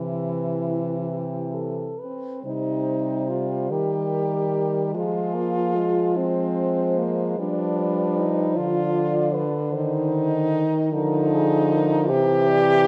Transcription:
0.00 2.06 C3 soft
0.00 2.00 E3 medium
0.00 0.95 E4 soft
0.00 1.73 E4 soft
1.10 1.55 G4 soft
1.54 2.01 A4 medium
1.99 2.42 C4 medium
1.99 2.43 B4 soft
2.43 3.72 C3 medium
2.43 4.96 G3 soft
2.43 3.31 D#4 medium
2.43 3.73 C5 medium
3.29 3.72 F4 medium
3.70 4.96 D#3 medium
3.70 4.94 G4 medium
3.70 4.93 A#4 medium
4.93 7.37 F3 soft
4.93 5.36 G#3 medium
4.93 6.18 F4 medium
4.93 6.16 G#4 medium
5.35 5.77 A#3 medium
5.75 7.40 G#3 medium
6.14 7.00 C4 medium
6.14 7.38 C5 medium
6.98 7.39 A#3 medium
7.38 9.42 F3 medium
7.38 8.55 G3 medium
7.38 8.20 D4 medium
7.38 8.56 B4 medium
8.18 8.58 D#4 medium
8.55 10.61 D3 medium
8.55 9.46 F4 loud
8.55 8.94 D5 medium
8.94 9.35 D5 medium
9.33 9.74 B4 medium
9.72 10.94 D#3 medium
9.72 10.89 D#4 loud
9.72 10.66 C5 medium
10.91 12.12 D3 medium
10.91 12.12 F3 medium
10.91 12.10 D#4 loud
10.91 11.29 A#4 medium
11.33 11.74 G#4 medium
11.73 12.11 A#4 medium
12.09 12.87 C3 medium
12.09 12.87 E3 medium
12.09 12.87 G4 loud
12.09 12.50 C5 medium
12.49 12.87 D5 medium

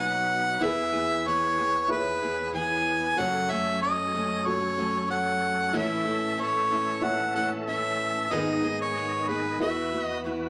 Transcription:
0.00 0.58 B2 medium
0.00 0.58 F#3 medium
0.00 0.59 F#3 medium
0.00 0.61 B3 medium
0.00 0.62 D4 medium
0.00 0.58 D#4 medium
0.00 0.61 D#4 medium
0.00 0.63 D#4 medium
0.00 0.61 F#4 medium
0.00 0.62 F#4 medium
0.00 0.63 B4 medium
0.00 3.14 B4 medium
0.00 0.33 C#5 medium
0.00 0.58 F#5 medium
0.00 0.66 F#5 loud
0.60 3.14 E2 medium
0.60 0.92 E3 medium
0.60 3.15 E3 medium
0.60 3.14 B3 medium
0.60 0.93 B3 medium
0.60 1.60 E4 medium
0.60 0.92 E4 medium
0.60 3.15 G#4 medium
0.60 0.91 G#4 loud
0.60 1.60 G#4 medium
0.60 1.61 B4 medium
0.64 1.29 E5 loud
0.92 1.25 B3 soft
0.92 1.25 E4 medium
0.92 1.25 G#4 medium
1.25 1.57 E3 medium
1.25 1.58 B3 medium
1.25 1.58 E4 medium
1.25 1.57 G#4 medium
1.25 1.90 C#5 loud
1.58 2.23 B3 soft
1.58 2.21 E4 medium
1.58 2.21 G#4 medium
1.88 2.88 E4 medium
1.88 2.89 G#4 medium
1.88 1.96 B4 medium
1.88 2.50 B4 medium
1.97 2.92 C#5 medium
2.22 2.52 B3 soft
2.22 2.53 E4 medium
2.22 2.54 G#4 medium
2.52 3.17 E3 medium
2.52 3.18 B3 medium
2.52 3.18 E4 medium
2.52 3.18 G#4 medium
2.52 3.20 G#5 loud
3.16 3.50 F#2 medium
3.16 5.72 F#2 medium
3.16 3.50 C#3 medium
3.16 3.50 F#3 medium
3.16 5.72 F#3 medium
3.16 3.50 A3 medium
3.16 8.28 C#4 medium
3.16 3.49 C#4 medium
3.16 4.16 F#4 medium
3.16 4.16 A4 medium
3.16 8.28 A4 medium
3.16 3.48 A4 medium
3.16 4.17 C#5 medium
3.16 5.72 C#5 medium
3.16 3.52 F#5 loud
3.50 3.81 F#3 soft
3.50 3.81 A3 medium
3.50 3.82 C#4 medium
3.50 3.82 A4 medium
3.50 3.81 E5 loud
3.82 4.14 F#3 medium
3.82 4.14 A3 medium
3.82 4.13 C#4 medium
3.82 4.12 A4 medium
3.82 4.48 D#5 loud
4.14 4.78 F#3 soft
4.14 4.78 A3 medium
4.14 4.78 C#4 medium
4.14 4.77 A4 medium
4.45 5.45 F#4 medium
4.45 5.45 A4 medium
4.45 5.10 C#5 loud
4.45 5.46 C#5 medium
4.77 5.08 F#3 soft
4.77 5.08 A3 soft
4.77 5.09 C#4 medium
4.77 5.10 A4 medium
5.09 5.74 F#3 medium
5.09 5.74 A3 medium
5.09 5.74 C#4 medium
5.09 5.74 A4 medium
5.09 5.78 F#5 loud
5.73 6.06 A2 medium
5.73 8.29 A2 medium
5.73 6.06 E3 medium
5.73 8.29 E3 medium
5.73 6.06 A3 medium
5.73 6.05 C#4 medium
5.73 6.73 E4 medium
5.73 6.05 E4 medium
5.73 6.73 A4 medium
5.73 6.04 A4 loud
5.73 6.74 C#5 medium
5.73 8.29 E5 medium
5.73 6.42 E5 medium
6.05 6.37 A3 soft
6.05 6.37 C#4 medium
6.05 6.37 E4 medium
6.05 6.38 A4 medium
6.38 6.70 A3 medium
6.38 6.71 C#4 medium
6.38 6.70 E4 medium
6.38 6.69 A4 medium
6.38 7.06 C#5 loud
6.70 7.36 A3 soft
6.70 7.36 C#4 medium
6.70 7.35 E4 medium
6.70 7.34 A4 medium
7.01 8.01 E4 medium
7.01 8.02 A4 medium
7.01 8.03 C#5 medium
7.01 7.35 F#5 loud
7.35 7.66 A3 soft
7.35 7.67 C#4 medium
7.35 7.68 E4 medium
7.35 7.67 A4 medium
7.35 7.50 F#5 medium
7.67 8.31 A3 medium
7.67 8.32 C#4 medium
7.67 8.32 E4 medium
7.67 8.32 A4 medium
7.67 8.33 E5 loud
8.31 9.59 G#2 medium
8.31 8.63 G#2 medium
8.31 9.59 D#3 medium
8.31 8.63 D#3 medium
8.31 8.64 G#3 medium
8.31 10.49 B3 medium
8.31 8.64 B3 loud
8.31 9.31 D#4 medium
8.31 8.63 D#4 loud
8.31 9.59 G#4 medium
8.31 9.31 G#4 medium
8.31 8.62 G#4 medium
8.31 9.32 B4 medium
8.31 9.59 D#5 medium
8.31 8.80 D#5 loud
8.63 8.95 G#3 soft
8.63 8.95 B3 soft
8.63 8.96 D#4 medium
8.63 8.96 G#4 medium
8.81 9.30 C#5 medium
8.96 9.28 G#3 medium
8.96 9.28 B3 medium
8.96 9.28 D#4 medium
8.96 9.27 G#4 medium
9.28 9.60 G#3 soft
9.28 9.60 B3 medium
9.28 9.61 D#4 medium
9.28 9.60 G#4 medium
9.28 9.61 B4 medium
9.59 10.49 E2 medium
9.59 10.49 E3 medium
9.59 9.92 E3 medium
9.59 9.93 B3 medium
9.59 10.49 E4 medium
9.59 9.92 E4 medium
9.59 10.49 F#4 medium
9.59 9.91 F#4 medium
9.59 10.49 B4 medium
9.59 10.04 E5 medium
9.92 10.24 B3 soft
9.92 10.25 E4 soft
9.92 10.24 F#4 medium
10.04 10.21 D#5 medium
10.24 10.49 E3 medium
10.24 10.49 B3 medium
10.24 10.49 E4 medium
10.24 10.49 F#4 medium

